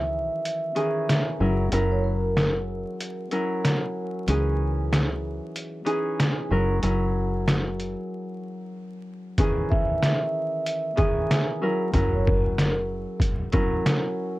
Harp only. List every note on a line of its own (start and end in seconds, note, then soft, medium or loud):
0.00 0.74 D#3 medium
0.00 0.74 E3 medium
0.00 0.75 C#4 medium
0.00 0.76 G#4 loud
0.00 0.34 A#4 loud
0.75 1.46 D#3 medium
0.75 1.46 E3 medium
0.75 1.40 C#4 medium
0.75 1.40 G#4 loud
1.40 1.71 F#3 medium
1.40 1.64 C#4 medium
1.40 1.64 E4 medium
1.40 1.64 A#4 loud
1.72 3.30 F#3 medium
1.72 3.31 C#4 medium
1.72 3.31 E4 medium
1.72 3.32 A#4 loud
3.31 4.33 F#3 medium
3.31 4.28 C#4 medium
3.31 4.34 E4 medium
3.31 5.44 A#4 loud
4.28 5.84 E3 loud
4.28 5.85 C#4 medium
4.28 5.85 D#4 medium
4.28 5.86 G#4 loud
5.85 6.56 E3 medium
5.85 6.50 C#4 medium
5.85 6.50 D#4 medium
5.85 6.51 G#4 loud
6.51 6.81 F#3 medium
6.51 6.74 C#4 medium
6.51 6.74 E4 medium
6.51 6.74 A#4 loud
6.82 9.43 F#3 medium
6.82 9.39 C#4 medium
6.82 9.45 E4 medium
6.82 8.96 A#4 loud
9.38 10.95 D#3 medium
9.38 10.95 E3 medium
9.38 10.96 C#4 medium
9.38 10.97 G#4 loud
10.96 11.67 D#3 medium
10.96 11.67 E3 medium
10.96 11.61 C#4 medium
10.96 11.61 G#4 loud
11.61 11.92 F#3 loud
11.61 11.85 C#4 medium
11.61 11.85 E4 medium
11.61 11.85 A#4 loud
11.93 13.51 F#3 medium
11.93 13.53 C#4 medium
11.93 13.52 E4 medium
11.93 13.53 A#4 loud
13.52 14.39 F#3 medium
13.52 14.39 C#4 medium
13.52 14.39 E4 medium
13.52 14.39 A#4 loud